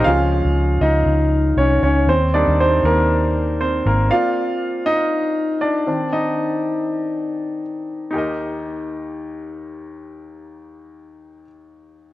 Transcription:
X:1
M:4/4
L:1/16
Q:"Swing 16ths" 1/4=119
K:Eb
V:1 name="Grand piano"
[Ff]4 z2 [Ee]6 [_D_d]2 [Dd]2 | [Cc]2 [Dd]2 [Cc]2 [B,B]6 [Cc]2 [B,B]2 | [Ff]6 [Ee]6 [Dd]4 | [Ee]12 z4 |
[EGBe]16- | [EGBe]16 |]
V:2 name="Grand piano"
[F,A,_D]6 z8 z2 | z2 [G,B,E]2 z12 | [B,Cd]12- [B,Cd]2 [E,CD]2 | z16 |
E,,16- | E,,16 |]
V:3 name="Fingered electric bass" clef=bass
_D,,3 D,,3 D,,2 D,,4 C,,2 D,,2 | E,,3 E,,3 E,,8 A,,,2 | z16 | z16 |
z16 | z16 |]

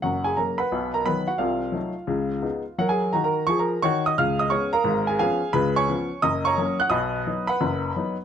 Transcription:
X:1
M:4/4
L:1/16
Q:"Swing" 1/4=174
K:F#
V:1 name="Grand piano"
[Ff]2 [Gg]2 [Aa]2 [Bfb]4 [Aa]2 [Bb]2 [Ff]2 | [Ee]16 | f [Gg]3 a [Aa]3 c' [Aa]3 [cc']2 [dd']2 | [ee']2 [dd']2 [cc']2 [Aea]4 [Gg]2 [Geg]4 |
[Bb]2 [cgc']6 [dd']2 [cac']4 [ff']2 | [dbd']6 [Bfb]8 z2 |]
V:2 name="Grand piano" clef=bass
[F,,,F,,]4 [C,F,A,]4 [B,,,B,,]4 [D,F,B,]4 | [=C,,=C,]4 [_G,=A,_E]4 [^C,,^C,]4 [^G,B,D]4 | [F,A]4 [D,F]4 [E,G]4 [D,F]4 | [C,,C,]4 [G,B,C]4 [G,,,G,,]4 [E,B,C]4 |
[C,,C,]4 [E,B,C]4 [F,,,F,,]4 [F,A,C]4 | [B,,,B,,]4 [F,B,D]4 [F,,,F,,]4 [F,B,D]4 |]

